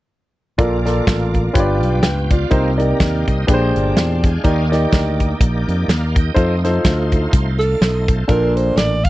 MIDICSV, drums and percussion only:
0, 0, Header, 1, 2, 480
1, 0, Start_track
1, 0, Key_signature, -2, "major"
1, 0, Tempo, 481541
1, 588, Time_signature, 4, 2, 24, 8
1, 9065, End_track
2, 0, Start_track
2, 0, Title_t, "Drums"
2, 586, Note_on_c, 9, 36, 80
2, 590, Note_on_c, 9, 42, 60
2, 685, Note_off_c, 9, 36, 0
2, 690, Note_off_c, 9, 42, 0
2, 861, Note_on_c, 9, 38, 30
2, 863, Note_on_c, 9, 42, 75
2, 961, Note_off_c, 9, 38, 0
2, 963, Note_off_c, 9, 42, 0
2, 1068, Note_on_c, 9, 36, 88
2, 1071, Note_on_c, 9, 42, 82
2, 1073, Note_on_c, 9, 38, 107
2, 1168, Note_off_c, 9, 36, 0
2, 1170, Note_off_c, 9, 42, 0
2, 1172, Note_off_c, 9, 38, 0
2, 1337, Note_on_c, 9, 42, 56
2, 1342, Note_on_c, 9, 36, 65
2, 1437, Note_off_c, 9, 42, 0
2, 1442, Note_off_c, 9, 36, 0
2, 1548, Note_on_c, 9, 36, 97
2, 1549, Note_on_c, 9, 42, 97
2, 1648, Note_off_c, 9, 36, 0
2, 1649, Note_off_c, 9, 42, 0
2, 1825, Note_on_c, 9, 42, 62
2, 1925, Note_off_c, 9, 42, 0
2, 2021, Note_on_c, 9, 38, 113
2, 2026, Note_on_c, 9, 42, 83
2, 2121, Note_off_c, 9, 38, 0
2, 2126, Note_off_c, 9, 42, 0
2, 2298, Note_on_c, 9, 42, 73
2, 2299, Note_on_c, 9, 36, 90
2, 2397, Note_off_c, 9, 42, 0
2, 2398, Note_off_c, 9, 36, 0
2, 2500, Note_on_c, 9, 42, 67
2, 2506, Note_on_c, 9, 36, 81
2, 2600, Note_off_c, 9, 42, 0
2, 2606, Note_off_c, 9, 36, 0
2, 2787, Note_on_c, 9, 42, 76
2, 2887, Note_off_c, 9, 42, 0
2, 2990, Note_on_c, 9, 42, 87
2, 2991, Note_on_c, 9, 36, 81
2, 2992, Note_on_c, 9, 38, 99
2, 3089, Note_off_c, 9, 42, 0
2, 3091, Note_off_c, 9, 36, 0
2, 3092, Note_off_c, 9, 38, 0
2, 3267, Note_on_c, 9, 36, 78
2, 3267, Note_on_c, 9, 42, 57
2, 3366, Note_off_c, 9, 36, 0
2, 3366, Note_off_c, 9, 42, 0
2, 3471, Note_on_c, 9, 42, 99
2, 3473, Note_on_c, 9, 36, 100
2, 3570, Note_off_c, 9, 42, 0
2, 3572, Note_off_c, 9, 36, 0
2, 3748, Note_on_c, 9, 42, 69
2, 3848, Note_off_c, 9, 42, 0
2, 3954, Note_on_c, 9, 38, 106
2, 3959, Note_on_c, 9, 42, 84
2, 4054, Note_off_c, 9, 38, 0
2, 4059, Note_off_c, 9, 42, 0
2, 4224, Note_on_c, 9, 36, 92
2, 4232, Note_on_c, 9, 42, 73
2, 4323, Note_off_c, 9, 36, 0
2, 4332, Note_off_c, 9, 42, 0
2, 4431, Note_on_c, 9, 36, 83
2, 4434, Note_on_c, 9, 42, 66
2, 4530, Note_off_c, 9, 36, 0
2, 4534, Note_off_c, 9, 42, 0
2, 4712, Note_on_c, 9, 38, 34
2, 4714, Note_on_c, 9, 42, 76
2, 4812, Note_off_c, 9, 38, 0
2, 4814, Note_off_c, 9, 42, 0
2, 4908, Note_on_c, 9, 42, 88
2, 4910, Note_on_c, 9, 36, 84
2, 4910, Note_on_c, 9, 38, 96
2, 5008, Note_off_c, 9, 42, 0
2, 5010, Note_off_c, 9, 36, 0
2, 5010, Note_off_c, 9, 38, 0
2, 5183, Note_on_c, 9, 42, 59
2, 5186, Note_on_c, 9, 36, 68
2, 5282, Note_off_c, 9, 42, 0
2, 5286, Note_off_c, 9, 36, 0
2, 5389, Note_on_c, 9, 36, 97
2, 5392, Note_on_c, 9, 42, 103
2, 5489, Note_off_c, 9, 36, 0
2, 5492, Note_off_c, 9, 42, 0
2, 5668, Note_on_c, 9, 42, 66
2, 5768, Note_off_c, 9, 42, 0
2, 5874, Note_on_c, 9, 38, 102
2, 5879, Note_on_c, 9, 42, 78
2, 5974, Note_off_c, 9, 38, 0
2, 5979, Note_off_c, 9, 42, 0
2, 6140, Note_on_c, 9, 36, 98
2, 6144, Note_on_c, 9, 42, 70
2, 6240, Note_off_c, 9, 36, 0
2, 6244, Note_off_c, 9, 42, 0
2, 6344, Note_on_c, 9, 36, 81
2, 6344, Note_on_c, 9, 42, 70
2, 6444, Note_off_c, 9, 36, 0
2, 6444, Note_off_c, 9, 42, 0
2, 6624, Note_on_c, 9, 38, 28
2, 6626, Note_on_c, 9, 42, 77
2, 6723, Note_off_c, 9, 38, 0
2, 6725, Note_off_c, 9, 42, 0
2, 6824, Note_on_c, 9, 42, 83
2, 6825, Note_on_c, 9, 36, 76
2, 6826, Note_on_c, 9, 38, 100
2, 6923, Note_off_c, 9, 42, 0
2, 6925, Note_off_c, 9, 36, 0
2, 6925, Note_off_c, 9, 38, 0
2, 7096, Note_on_c, 9, 42, 63
2, 7100, Note_on_c, 9, 36, 68
2, 7195, Note_off_c, 9, 42, 0
2, 7200, Note_off_c, 9, 36, 0
2, 7306, Note_on_c, 9, 42, 99
2, 7307, Note_on_c, 9, 36, 101
2, 7406, Note_off_c, 9, 42, 0
2, 7407, Note_off_c, 9, 36, 0
2, 7585, Note_on_c, 9, 42, 67
2, 7685, Note_off_c, 9, 42, 0
2, 7793, Note_on_c, 9, 38, 101
2, 7798, Note_on_c, 9, 42, 76
2, 7892, Note_off_c, 9, 38, 0
2, 7897, Note_off_c, 9, 42, 0
2, 8057, Note_on_c, 9, 36, 96
2, 8061, Note_on_c, 9, 42, 68
2, 8157, Note_off_c, 9, 36, 0
2, 8160, Note_off_c, 9, 42, 0
2, 8260, Note_on_c, 9, 42, 62
2, 8263, Note_on_c, 9, 36, 87
2, 8360, Note_off_c, 9, 42, 0
2, 8362, Note_off_c, 9, 36, 0
2, 8542, Note_on_c, 9, 42, 79
2, 8642, Note_off_c, 9, 42, 0
2, 8746, Note_on_c, 9, 42, 85
2, 8748, Note_on_c, 9, 38, 105
2, 8846, Note_off_c, 9, 42, 0
2, 8848, Note_off_c, 9, 38, 0
2, 9017, Note_on_c, 9, 42, 58
2, 9020, Note_on_c, 9, 36, 78
2, 9065, Note_off_c, 9, 36, 0
2, 9065, Note_off_c, 9, 42, 0
2, 9065, End_track
0, 0, End_of_file